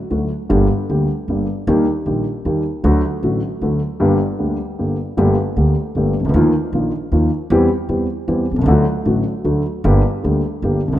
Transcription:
0.10 D2 D3 F#3 A3 F#4
0.49 G1 G2 D3 G3 A#3 G4
0.89 D2 D3 G3 A#3 G4
1.28 G1 G2 D3 G3 A#3 G4
1.67 D#2 D#3 G3 A#3 G4
2.06 A#1 A#2 D#3 G3 A#3 G4
2.45 D#2 D#3 G3 A#3 G4
2.84 D2 D3 F#3 A3 F#4
3.23 A1 A2 D3 F#3 A3 F#4
3.61 D2 D3 F#3 A3 F#4
4.00 G1 G2 D3 G3 A#3 G4
4.39 D2 D3 G3 A#3 G4
4.79 G1 G2 D3 G3 A#3 G4
5.17 G1 G2 D3 A3 A#3 G4
5.56 D2 D3 A3 A#3 G4
5.95 G1 G2 D3 A3 A#3 G4
6.20 C2
6.25 C#2
6.29 D2
6.34 D#2 D#3 F3 A#3 F4
6.73 A#1 A#2 D#3 F3 A#3 F4
7.12 D#2 D#3 F3 A#3 F4
7.50 E2 E3 G3 C4 G4
7.89 E2 E3 G3 C4 G4
8.28 E2 E3 G3 C4 G4
8.51 B1
8.56 C2
8.61 C#2
8.66 D2 D3 F#3 A3 F#4
9.05 A1 A2 D3 F#3 A3 F#4
9.44 D2 D3 F#3 A3 F#4
9.84 G1 G2 D3 G3 A#3 G4
10.23 D2 D3 G3 A#3 G4
10.62 G1 G2 D3 G3 A#3 G4
10.87 C2
10.92 C#2

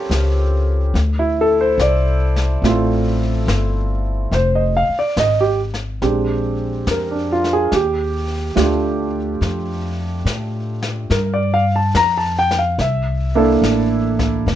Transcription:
Already playing: G3 C4 C#4 F4 G4 A4 A#4 C5 C#5
0.10 C#2, snare, hi-hat pedal
0.94 D2, brush sweep, snare
1.19 E4
1.41 A4
1.61 C5
1.78 C2 D5, snare, hi-hat pedal
2.36 snare
2.62 A1 A3 C4 E4 F4, brush sweep, snare
3.47 G1, snare, hi-hat pedal
4.31 F1 C5, brush sweep, snare
4.55 D#5
4.77 F5
4.89 muted upright bass stroke
4.99 D5
5.17 G#1 D#5, snare, hi-hat pedal
5.41 G4
5.74 snare
6.02 A#1 G#3 C4 D4 G4, brush sweep, snare
6.87 F2, snare, hi-hat pedal
6.91 A#4
7.11 D4
7.32 F4
7.44 snare
7.53 G#4
7.72 D#2 G4, brush sweep, snare
8.55 D2 A3 D4 F4 G4, snare, hi-hat pedal
9.41 F2, brush sweep, snare
10.25 A2, snare, hi-hat pedal
10.82 snare
11.10 G2 A#4, brush sweep, snare
11.34 D5
11.54 F5
11.76 A5
11.94 F2 A#5, snare, hi-hat pedal
12.17 A5
12.39 G5
12.51 snare
12.59 F5
12.78 C2 E5, brush sweep, snare
13.35 A#3 D4 E4 A4
13.62 A1, snare, hi-hat pedal
14.19 kick, snare
14.46 F1, brush sweep, snare

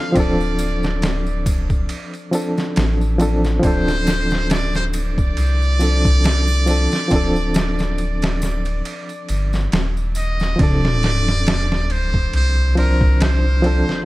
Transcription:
Already playing: F3 C4 D4 A4 F5
0.12 D1 F3 C4, kick, ride, tambourine
0.16 D4 A4 D5
0.41 tambourine
0.59 ride, tambourine
0.83 snare, tambourine
1.02 snare, ride, tambourine
1.27 tambourine
1.46 kick, ride, tambourine, triangle
1.70 kick, tambourine
1.89 ride, tambourine
2.14 ride, tambourine
2.31 F3 C4 D4 A4, ride, tambourine
2.58 snare, tambourine
2.76 A1, snare, ride, tambourine
3.01 tambourine
3.18 F3 C4 D4 A4, ride, tambourine
3.44 snare, tambourine
3.60 D1 F3 C4, kick, ride
3.64 D4 A4 C5, tambourine
3.88 snare, tambourine
4.07 snare, ride, tambourine
4.31 snare, tambourine
4.50 D5, snare, ride, tambourine
4.75 C5, snare, tambourine
4.93 D5, ride, tambourine, triangle
5.18 kick, tambourine
5.37 C2, ride, tambourine
5.62 tambourine
5.79 F3 C4 D4 A4, ride, tambourine
6.05 kick, tambourine
6.24 snare, ride, tambourine
6.48 tambourine, triangle
6.67 F3 C4 D4, ride, tambourine
6.71 A4
6.92 snare, tambourine
7.08 D1 F3 C4, kick, ride, tambourine
7.13 D4 A4
7.36 tambourine
7.54 snare, ride, tambourine
7.79 snare, tambourine
7.98 ride, tambourine
8.22 snare, ride, tambourine
8.42 snare, tambourine, triangle
8.65 ride, tambourine
8.85 ride, tambourine
9.09 ride, tambourine
9.29 G1, ride, tambourine
9.53 snare, tambourine
9.72 D#1, snare, ride, tambourine
9.97 tambourine
10.15 D#5, ride, tambourine
10.40 snare, tambourine
10.56 D1 F3 C4, kick, ride, sub drop
10.60 D4 A4 D5
10.85 snare
11.03 snare, ride
11.28 snare
11.47 snare, ride
11.72 snare
11.90 C5, ride
12.14 kick
12.33 C2 C5, ride
12.75 F3 C4 D4 A#4 C5, ride
13.01 kick
13.21 C5, snare, ride
13.62 F3 C4 D4 A4, ride
13.89 snare

